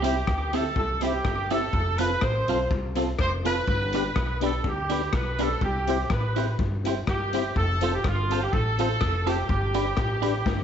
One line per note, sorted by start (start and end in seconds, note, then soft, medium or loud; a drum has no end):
0.00 0.20 C2 loud
0.00 0.14 C4 loud
0.00 0.15 E4 medium
0.00 0.50 G4 medium
0.00 0.15 G4 loud
0.00 closed hi-hat loud
0.05 0.15 C4 medium
0.05 0.16 E4 medium
0.05 0.16 G4 loud
0.27 0.69 D2 medium
0.27 muted clean electric guitar stroke soft
0.27 kick loud
0.27 cross-stick loud
0.53 0.64 C4 medium
0.53 0.64 E4 medium
0.53 0.65 E4 loud
0.53 0.64 G4 loud
0.53 0.65 G4 loud
0.53 0.76 A4 medium
0.53 closed hi-hat medium
0.76 1.17 C2 medium
0.76 0.82 E4 soft
0.76 0.82 G4 soft
0.76 1.01 A4 medium
0.76 kick loud
1.01 1.13 C4 medium
1.01 1.13 E4 medium
1.01 1.14 E4 medium
1.01 1.50 G4 medium
1.01 1.13 G4 loud
1.01 1.14 G4 medium
1.01 closed hi-hat loud
1.25 1.66 G1 medium
1.25 kick loud
1.25 cross-stick loud
1.50 1.62 C4 medium
1.50 1.61 C4 medium
1.50 1.62 E4 medium
1.50 1.62 G4 medium
1.50 1.62 G4 loud
1.50 1.99 A4 loud
1.50 closed hi-hat loud
1.73 2.15 F1 loud
1.73 kick loud
1.98 2.10 C4 medium
1.98 2.11 F4 medium
1.98 2.10 F4 medium
1.98 2.11 A4 medium
1.98 2.11 A4 loud
1.98 2.21 B4 loud
1.98 closed hi-hat loud
2.21 2.44 A1 loud
2.21 2.71 C5 loud
2.21 muted clean electric guitar stroke soft
2.21 kick loud
2.21 cross-stick loud
2.48 2.67 B1 medium
2.48 2.58 C4 medium
2.48 2.59 C4 medium
2.48 2.59 F4 medium
2.48 2.59 A4 loud
2.48 2.60 A4 medium
2.48 closed hi-hat medium
2.71 3.12 C2 loud
2.71 2.76 F4 soft
2.71 2.76 A4 soft
2.71 kick loud
2.95 3.06 C4 medium
2.95 3.07 C4 medium
2.95 3.07 F4 medium
2.95 3.08 F4 medium
2.95 3.07 A4 loud
2.95 3.08 A4 medium
2.95 closed hi-hat medium
3.19 3.60 F1 medium
3.19 3.31 C5 medium
3.19 kick loud
3.19 cross-stick loud
3.44 3.55 C4 medium
3.44 3.56 C4 medium
3.44 3.55 F4 medium
3.44 3.56 F4 medium
3.44 3.55 A4 medium
3.44 3.57 A4 medium
3.44 4.38 B4 loud
3.44 closed hi-hat loud
3.68 4.09 G1 loud
3.68 kick loud
3.93 4.04 B3 medium
3.93 4.04 D4 medium
3.93 4.05 D4 medium
3.93 4.04 G4 medium
3.93 4.05 G4 medium
3.93 4.05 B4 medium
3.93 closed hi-hat medium
4.16 4.57 B1 medium
4.16 muted clean electric guitar stroke medium
4.16 kick loud
4.16 cross-stick loud
4.41 4.52 B3 medium
4.41 4.52 D4 medium
4.41 4.53 D4 loud
4.41 4.52 G4 loud
4.41 4.54 G4 medium
4.41 4.54 B4 loud
4.41 closed hi-hat medium
4.45 4.64 A4 medium
4.64 5.06 D2 medium
4.64 4.70 D4 soft
4.64 4.70 G4 soft
4.64 5.15 G4 medium
4.64 kick loud
4.90 5.01 B3 medium
4.90 5.01 D4 medium
4.90 5.02 G4 medium
4.90 5.01 G4 loud
4.90 5.02 B4 medium
4.90 closed hi-hat medium
5.13 5.54 B1 medium
5.13 5.40 B4 medium
5.13 kick loud
5.13 cross-stick loud
5.39 5.49 B3 medium
5.39 5.49 D4 medium
5.39 5.50 D4 medium
5.39 5.50 G4 loud
5.39 5.51 G4 medium
5.39 5.63 A4 medium
5.39 5.51 B4 medium
5.39 closed hi-hat loud
5.61 6.03 C2 loud
5.61 6.08 G4 medium
5.61 kick loud
5.87 5.98 C4 medium
5.87 5.98 E4 medium
5.87 5.99 E4 medium
5.87 5.98 G4 loud
5.87 6.00 G4 medium
5.87 6.00 C5 medium
5.87 closed hi-hat loud
6.10 6.52 A1 loud
6.10 6.57 B4 medium
6.10 muted clean electric guitar stroke medium
6.10 kick loud
6.10 cross-stick loud
6.36 6.46 C4 loud
6.36 6.47 E4 medium
6.36 6.47 G4 loud
6.36 6.48 G4 medium
6.36 6.48 C5 loud
6.36 closed hi-hat medium
6.59 7.00 G1 medium
6.59 6.64 E4 soft
6.59 6.64 G4 soft
6.59 kick loud
6.84 6.95 C4 medium
6.84 6.95 E4 medium
6.84 6.97 E4 medium
6.84 6.95 G4 loud
6.84 6.97 G4 medium
6.84 closed hi-hat loud
6.88 6.97 C5 medium
7.07 7.49 G1 medium
7.07 7.53 G4 loud
7.07 kick loud
7.07 cross-stick loud
7.33 7.44 C4 medium
7.33 7.44 E4 medium
7.33 7.45 E4 medium
7.33 7.44 G4 loud
7.33 7.45 G4 medium
7.33 7.45 C5 medium
7.33 closed hi-hat loud
7.56 7.97 F1 loud
7.56 7.91 A4 loud
7.56 kick loud
7.81 7.92 C4 medium
7.81 7.92 F4 medium
7.81 7.93 F4 medium
7.81 7.93 A4 loud
7.81 7.94 A4 medium
7.81 7.94 C5 loud
7.81 closed hi-hat loud
7.94 8.04 G4 medium
8.04 8.46 G1 loud
8.04 8.43 F4 loud
8.04 muted clean electric guitar stroke medium
8.04 kick loud
8.04 cross-stick loud
8.30 8.41 C4 loud
8.30 8.41 F4 medium
8.30 8.42 F4 medium
8.30 8.41 A4 loud
8.30 8.42 A4 medium
8.30 8.43 C5 medium
8.30 closed hi-hat medium
8.42 8.53 G4 medium
8.52 8.94 A1 medium
8.52 8.58 F4 soft
8.52 9.27 A4 loud
8.52 8.58 A4 soft
8.52 kick loud
8.78 8.89 C4 medium
8.78 8.89 F4 medium
8.78 8.90 F4 medium
8.78 8.90 A4 loud
8.78 8.91 C5 medium
8.78 closed hi-hat loud
9.01 9.42 F1 loud
9.01 kick loud
9.01 cross-stick loud
9.26 9.37 C4 medium
9.26 9.38 F4 loud
9.26 9.37 F4 medium
9.26 10.63 G4 loud
9.26 9.38 A4 loud
9.26 9.38 C5 loud
9.26 closed hi-hat loud
9.49 9.91 G1 loud
9.49 kick loud
9.74 9.86 D4 medium
9.74 9.86 G4 medium
9.74 9.86 B4 loud
9.74 9.86 B4 medium
9.74 closed hi-hat loud
9.97 10.39 A1 medium
9.97 muted clean electric guitar stroke soft
9.97 kick loud
9.97 cross-stick loud
10.22 10.34 D4 medium
10.22 10.34 G4 medium
10.22 10.34 B4 medium
10.22 10.35 B4 loud
10.22 closed hi-hat medium
10.46 10.63 G1 loud
10.46 10.52 G4 soft
10.46 10.51 B4 soft
10.46 kick loud
10.46 snare medium